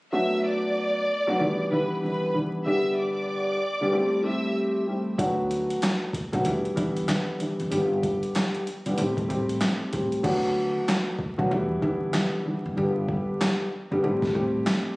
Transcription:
0.13 F#3 A3 B3 D4 F#4 E5 E6
0.46 D5 D6
1.27 F#3 A3 B3 D4 F#4
1.40 E3 G3 B3 D4 E4
1.71 E3 G3 B3 D4 E4 B4 B5
2.03 E3 G3 B3 D4 E4 B4 B5
2.34 E3 G3 B3 D4 E4
2.65 D3 G3 B3 D4 G4 E5 E6
2.97 D5 D6
3.81 D3 G3 B3 D4 G4
3.92 G3 A3 C4 E4 G4
4.23 G3 A3 C4 E4 G4 E5 E6
4.87 G3 A3 C4 E4 G4
5.18 D2 F#3 A3 B3 D4 F#4, kick, closed hi-hat
5.51 closed hi-hat
5.70 closed hi-hat
5.82 snare, clap, closed hi-hat
6.13 kick, closed hi-hat
6.32 B1 F#3 A3 B3 D4 F#4, kick, closed hi-hat
6.45 E2 E3 G3 B3 D4 E4, closed hi-hat
6.65 closed hi-hat
6.76 D2 E3 G3 B3 D4 E4, kick, closed hi-hat
6.97 closed hi-hat
7.08 E3 G3 B3 D4 E4, snare, clap, closed hi-hat
7.39 E3 G3 B3 D4 E4, closed hi-hat
7.60 F#1, closed hi-hat
7.70 G1 D3 G3 B3 D4 G4, closed hi-hat
8.03 kick, closed hi-hat
8.23 closed hi-hat
8.35 snare, clap, closed hi-hat
8.55 closed hi-hat
8.67 closed hi-hat
8.86 G1 D3 G3 B3 D4 G4, closed hi-hat
8.98 A1 G3 A3 C4 E4 G4, closed hi-hat
9.17 kick, closed hi-hat
9.28 A1 G3 A3 C4 E4 G4, kick, closed hi-hat
9.49 closed hi-hat
9.61 snare, clap, closed hi-hat
9.92 A1 G3 A3 C4 E4 G4, kick, closed hi-hat
10.12 closed hi-hat
10.23 D2 F#3 A3 B3 D4 F#4, kick, crash
10.89 snare, clap
11.19 kick
11.38 B1 F#3 A3 B3 D4 F#4, kick
11.51 E2 E3 G3 B3 D4 E4
11.82 D2 E3 G3 B3 D4 E4, kick
12.13 E3 G3 B3 D4 E4, snare, clap
12.45 E3 G3 B3 D4 E4
12.65 F#1
12.76 G1 D3 G3 B3 D4 G4
13.08 kick
13.41 snare, clap
13.91 G1 D3 G3 B3 D4 G4
14.03 A1 G3 A3 C4 E4 G4
14.22 kick, snare
14.34 A1 G3 A3 C4 E4 G4, kick
14.67 snare, clap

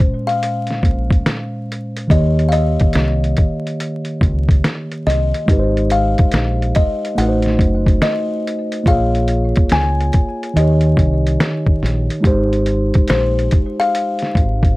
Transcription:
Already playing: A#2 G#3 C#4 C5
0.00 kick
0.27 F5, closed hi-hat
0.43 closed hi-hat
0.67 snare, closed hi-hat
0.83 A#1, kick, closed hi-hat
1.10 kick, closed hi-hat
1.26 finger snap, snare, closed hi-hat
1.72 closed hi-hat
1.96 closed hi-hat
2.07 D#2 D#3 A#3 D#5, kick, closed hi-hat
2.12 G4 C#5
2.39 closed hi-hat
2.49 F5, closed hi-hat
2.53 D#5
2.80 kick, closed hi-hat
2.93 C2, finger snap, snare, closed hi-hat
3.24 closed hi-hat
3.37 kick, closed hi-hat
3.67 closed hi-hat
3.80 closed hi-hat
4.05 closed hi-hat
4.21 C#2, kick, closed hi-hat
4.49 kick, closed hi-hat
4.64 finger snap, snare, closed hi-hat
4.92 closed hi-hat
5.07 C2 D#5, snare, closed hi-hat
5.34 closed hi-hat
5.46 G#1 G#3 D#4, kick, closed hi-hat
5.51 G4 B4
5.59 C5
5.77 closed hi-hat
5.90 F5, closed hi-hat
6.18 kick, closed hi-hat
6.31 A#1, finger snap, snare, closed hi-hat
6.62 closed hi-hat
6.75 D#5, kick, closed hi-hat
7.05 closed hi-hat
7.15 A1 A3 D#4 F#5, closed hi-hat
7.20 F#4 B4
7.28 C5
7.42 snare, closed hi-hat
7.59 F#1, kick, closed hi-hat
7.86 kick, closed hi-hat
8.02 D#5, finger snap, snare, closed hi-hat
8.47 closed hi-hat
8.72 closed hi-hat
8.84 A#1 A#3 F4, kick, closed hi-hat
8.88 G#4 C#5 F5
9.15 closed hi-hat
9.28 closed hi-hat
9.56 kick, closed hi-hat
9.69 C#2 G#5, finger snap, snare, closed hi-hat
10.00 closed hi-hat
10.13 kick, closed hi-hat
10.43 closed hi-hat
10.54 D#2 D#3 D#4 D#5, closed hi-hat
10.58 G4 C#5
10.81 closed hi-hat
10.97 C2, kick, closed hi-hat
11.27 closed hi-hat
11.40 finger snap, snare, closed hi-hat
11.66 kick
11.83 A#1, snare, closed hi-hat
12.10 closed hi-hat
12.21 G#1 G#3 D#4, kick
12.25 G4 C5, closed hi-hat
12.53 closed hi-hat
12.66 closed hi-hat
12.94 kick, closed hi-hat
13.07 A#1 C5, finger snap, snare, closed hi-hat
13.39 closed hi-hat
13.51 kick, closed hi-hat
13.80 F5, closed hi-hat
13.95 closed hi-hat
14.19 snare, closed hi-hat
14.35 G#1, kick, closed hi-hat
14.63 kick, closed hi-hat

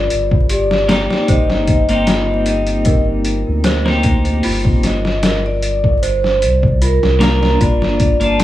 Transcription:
Already playing: F4 G4 A#4 D5
0.10 G1, closed hi-hat
0.31 kick
0.50 G4 D5, closed hi-hat
0.71 snare
0.89 A#3 C4 D#4, snare, closed hi-hat
0.93 G4
1.10 snare
1.28 G1 C5 D#5, kick, closed hi-hat
1.50 snare
1.67 kick, closed hi-hat
1.89 A#3 C4 D#4 D#5, closed hi-hat
1.93 G4
2.07 F4, snare, closed hi-hat
2.46 D#5, closed hi-hat
2.67 closed hi-hat
2.85 A#4, kick, closed hi-hat
3.25 closed hi-hat
3.48 D2
3.64 C5, snare, closed hi-hat
3.85 A#3 C4 D#4, snare
3.90 G4
4.03 kick, closed hi-hat
4.25 closed hi-hat
4.43 G1 F4, open hi-hat
4.65 kick
4.83 D#5, snare, closed hi-hat
5.05 snare
5.23 A#4, snare, closed hi-hat
5.46 D5
5.62 closed hi-hat
5.84 kick
6.03 C5, closed hi-hat
6.24 snare
6.42 C2, closed hi-hat
6.63 kick
6.82 F4 A#4, closed hi-hat
7.03 C2, snare
7.20 A#3 D4 F4 A#4, snare, closed hi-hat
7.43 snare
7.61 G1 F4 D5, kick, closed hi-hat
7.82 snare
8.00 kick, closed hi-hat
8.20 A#3 D4 F4 D5 A5, closed hi-hat
8.40 G4, snare, closed hi-hat

